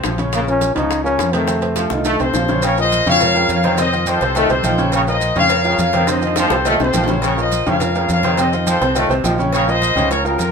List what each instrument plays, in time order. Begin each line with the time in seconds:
Already playing: grand piano C3 C4 C5
0.03 fingered electric bass A#1, trombone section F3, high bongo, low bongo, high conga, high timbale, low timbale, maracas
0.18 grand piano C#3 C#4 C#5, high bongo, high conga, high timbale, maracas
0.33 trombone section C#3, trombone A#3, high bongo, high timbale, maracas
0.47 grand piano F3 F4 A#4, trombone C#4, high conga, maracas
0.61 high bongo, high conga, high timbale, maracas
0.75 fingered electric bass C#2, grand piano C#3 C#4 C#5, trombone section F3, trombone D#4, low conga, high timbale, maracas
0.90 high bongo, high conga, maracas
1.04 trombone section C#3, grand piano F3 F4 A#4, trombone C#4, high conga, maracas
1.18 fingered electric bass F2, high bongo, low bongo, high conga, high timbale, maracas
1.33 grand piano C3 C4 C5, trombone section D#3, trombone A3, high conga, high timbale, maracas
1.47 grand piano C3 C4 C5, high bongo, high conga, maracas
1.62 grand piano C3 C4 C5, high timbale, maracas
1.75 trombone section F3, high bongo, high conga, high timbale, maracas
1.90 fingered electric bass C2, grand piano D#3 D#4 F4, high bongo, high conga, high timbale, maracas
2.05 trombone section A3, low bongo, high conga, high timbale, maracas
2.19 fingered electric bass C2, grand piano C3 C4 C5, trumpet section A4 C5, high conga, high timbale, maracas
2.34 fingered electric bass A#1, trombone section F3, low bongo, low timbale, maracas
2.48 grand piano C#3 C#4 C#5, low bongo, high conga, low timbale, maracas
2.62 trombone section C#3, trumpet section A#4 C#5, cowbell, low agogo, maracas
2.78 grand piano F3 F4 A#4, trumpet section C5 D#5, high conga, low agogo, maracas
2.92 cowbell, high conga, low agogo, maracas
3.05 fingered electric bass F2, grand piano C#3 C#4 C#5, trombone section F3, trumpet section F5, high conga, low conga, low agogo, maracas
3.09 trumpet section C#5
3.20 grand piano F3 F4 A#4, cowbell, high conga, low conga, maracas
3.34 trombone section C#3, grand piano F3 F4 A#4, low agogo, maracas
3.49 fingered electric bass F2, trumpet section C#5 F5, cowbell, high conga, low agogo, maracas
3.63 grand piano C3 C4 C5, trombone section D#3, cowbell, high conga, low agogo, maracas
3.78 grand piano C3 C4 C5, trumpet section C5 D#5, cowbell, high conga, low agogo, maracas
3.93 grand piano D#3 D#4 F4, high conga, low agogo, maracas
4.06 trombone section F3, trumpet section A4 C5, cowbell, high conga, low agogo, maracas
4.20 fingered electric bass C2, grand piano C3 C4 C5, cowbell, high conga, maracas
4.35 grand piano D#3 D#4 F4, trombone section A3, trumpet section F4 A4, cowbell, high conga, low agogo, maracas
4.49 fingered electric bass C2, grand piano C3 C4 C5, trumpet section A4 C5, high conga, maracas
4.63 fingered electric bass A#1, grand piano D#3 D#4 F4, trombone section F3, cowbell, high conga, low agogo, maracas
4.78 grand piano C#3 C#4 C#5, high conga, low agogo, maracas
4.92 trombone section C#3, trumpet section A#4 C#5, cowbell, high conga, low agogo, maracas
5.07 grand piano F3 F4 A#4, trumpet section C5 D#5, high conga, low agogo, maracas
5.21 cowbell, high conga, low agogo, maracas
5.36 fingered electric bass F2, grand piano C#3 C#4 C#5, trombone section F3, trumpet section C#5 F5, high conga, low conga, low agogo, maracas
5.49 grand piano F3 F4 A#4, cowbell, high conga, maracas
5.64 trombone section C#3, grand piano F3 F4 A#4, high conga, low agogo, maracas
5.78 fingered electric bass F2, trumpet section C#5 F5, cowbell, high conga, low agogo, maracas
5.93 grand piano C3 C4 C5, trombone section D#3, cowbell, high conga, low agogo, maracas
6.07 grand piano C3 C4 C5, trumpet section C5, cowbell, high conga, high timbale, low agogo, maracas
6.11 trumpet section D#5
6.17 high timbale
6.21 grand piano D#3 D#4 F4, high conga, low agogo, maracas
6.27 high timbale
6.36 trombone section F3, trumpet section A4 C5, cowbell, high bongo, high conga, high timbale, low agogo, maracas
6.45 low timbale
6.50 fingered electric bass C2, grand piano C3 C4 C5, cowbell, high bongo, high conga, maracas
6.65 grand piano D#3 D#4 F4, trombone section A3, trumpet section F4 A4, cowbell, high conga, low timbale, low agogo, maracas
6.75 low timbale
6.80 fingered electric bass C2, grand piano C3 C4 C5, trumpet section A4 C5, low bongo, high conga, maracas
6.84 low timbale
6.93 fingered electric bass A#1, grand piano D#3 D#4 F4, trombone section F3, cowbell, low bongo, high conga, low timbale, low agogo, maracas
7.04 low timbale
7.08 grand piano C#3 C#4 C#5, low bongo, high conga, low agogo, maracas
7.14 low timbale
7.22 trombone section C#3, cowbell, high conga, low agogo, maracas
7.27 trumpet section A#4 C#5
7.37 grand piano F3 F4 A#4, trumpet section C5 D#5, high conga, low agogo, maracas
7.51 cowbell, high conga, low agogo, maracas
7.66 fingered electric bass F2, grand piano C#3 C#4 C#5, trombone section F3, trumpet section C#5 F5, high conga, low conga, low agogo, maracas
7.80 grand piano F3 F4 A#4, cowbell, high conga, low conga, maracas
7.95 trombone section C#3, grand piano F3 F4 A#4, high conga, low agogo, maracas
8.09 fingered electric bass F2, trumpet section C#5 F5, cowbell, high conga, low agogo, maracas
8.23 grand piano C3 C4 C5, trombone section D#3, cowbell, high conga, low agogo, maracas
8.37 grand piano C3 C4 C5, trumpet section C5 D#5, cowbell, low agogo, maracas
8.53 grand piano D#3 D#4 F4, low agogo, maracas
8.67 trombone section F3, trumpet section A4 C5, cowbell, high conga, low agogo, maracas
8.81 fingered electric bass C2, grand piano C3 C4 C5, cowbell, maracas
8.95 grand piano D#3 D#4 F4, trombone section A3, trumpet section F4 A4, cowbell, high conga, low agogo, maracas
9.09 fingered electric bass C2, grand piano C3 C4 C5, high conga, maracas
9.24 fingered electric bass A#1, grand piano D#3 D#4 F4, trombone section F3, cowbell, high conga, low timbale, low agogo, maracas
9.38 grand piano C#3 C#4 C#5, high conga, low agogo, maracas
9.53 trombone section C#3, trumpet section A#4 C#5, cowbell, high conga, low agogo, maracas
9.67 grand piano F3 F4 A#4, trumpet section C5 D#5, high conga, low agogo, maracas
9.81 cowbell, high conga, low agogo, maracas
9.96 fingered electric bass C#2, grand piano C#3 C#4 C#5, trombone section F3, high conga, low conga, low agogo, maracas
10.10 grand piano F3 F4 A#4, trumpet section A#4 C#5, cowbell, high conga, maracas
10.24 trombone section C#3, grand piano F3 F4 A#4, trumpet section F#4 A#4, high conga, low agogo, maracas
10.38 fingered electric bass F2, trumpet section F4 A#4, cowbell, high conga, low agogo, maracas